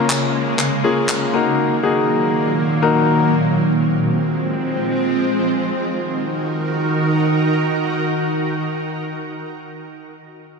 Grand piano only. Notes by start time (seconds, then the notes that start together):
Already playing: A#3 C#4 F4 A#4
0.84 A#3 C#4 F4 G#4
1.33 A#3 D#4 F#4 A#4
1.83 A#3 D#4 F#4 G#4
2.82 A#3 D#4 F#4 A#4